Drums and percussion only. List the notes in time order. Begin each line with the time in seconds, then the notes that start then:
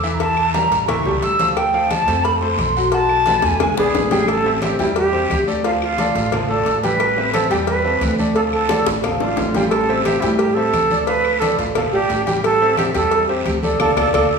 0.04 short guiro
0.20 cowbell, high conga, long guiro
0.37 high conga, claves
0.54 cowbell, high conga, short guiro
0.72 cowbell, high conga, short guiro
0.88 cowbell, high conga, low conga, long guiro, claves
1.05 high conga, low conga
1.22 cowbell, high conga, short guiro
1.39 cowbell, high conga, short guiro
1.57 cowbell, high conga, long guiro, claves
1.74 high conga
1.91 cowbell, high conga, short guiro, claves
2.08 cowbell, short guiro
2.25 cowbell, high conga, long guiro
2.42 high conga
2.58 cowbell, high conga, short guiro, claves
2.77 short guiro
2.92 cowbell, high conga, long guiro
3.09 high conga, claves
3.26 cowbell, high conga, short guiro
3.42 cowbell, high bongo, high conga, short guiro
3.60 cowbell, high bongo, high conga, low conga, long guiro, claves
3.77 low bongo
3.94 cowbell, low bongo, high conga, short guiro
4.11 cowbell, low bongo, high conga, short guiro
4.28 cowbell, high conga, long guiro, claves
4.45 high conga
4.62 cowbell, high conga, short guiro, claves
4.79 cowbell, high conga, short guiro
4.96 cowbell, high conga, long guiro
5.14 high conga
5.30 cowbell, high conga, short guiro, claves
5.48 short guiro
5.64 cowbell, high conga, long guiro
5.81 high conga, claves
5.98 cowbell, high conga, short guiro
6.15 cowbell, high conga, short guiro
6.32 cowbell, high conga, low conga, long guiro, claves
6.50 high conga
6.66 cowbell, high conga, short guiro
6.83 cowbell, high conga, short guiro
7.00 cowbell, high conga, long guiro, claves
7.17 high conga
7.34 cowbell, high conga, short guiro, claves
7.51 cowbell, short guiro
7.67 cowbell, high conga, long guiro
7.86 high conga
8.01 cowbell, high conga, short guiro, claves
8.19 high conga, short guiro
8.36 cowbell, long guiro
8.53 high conga, claves
8.69 cowbell, high bongo, high conga, short guiro
8.86 cowbell, high bongo, high conga, short guiro
9.04 cowbell, high conga, low conga, long guiro, claves
9.20 low bongo, high conga
9.37 cowbell, low bongo, high conga, short guiro
9.54 cowbell, low bongo, high conga, short guiro
9.71 cowbell, long guiro, claves
9.89 high conga
10.05 cowbell, high conga, short guiro, claves
10.22 cowbell, short guiro
10.39 cowbell, high conga, long guiro
10.57 high conga
10.73 cowbell, high conga, short guiro, claves
10.91 high conga, short guiro
11.07 cowbell, high conga, long guiro
11.24 high conga, claves
11.42 cowbell, high conga, short guiro
11.59 cowbell, short guiro
11.75 cowbell, high conga, low conga, long guiro, claves
11.93 high conga
12.10 cowbell, high conga, short guiro
12.27 cowbell, high conga, short guiro
12.44 cowbell, long guiro, claves
12.61 high conga
12.77 cowbell, high conga, short guiro, claves
12.95 cowbell, high conga, short guiro
13.11 cowbell, high conga, long guiro
13.29 high conga
13.46 cowbell, high conga, short guiro, claves
13.63 high conga, short guiro
13.80 cowbell, low conga, long guiro, claves
13.97 cowbell, low conga, long guiro, claves
14.14 cowbell, low conga, long guiro, claves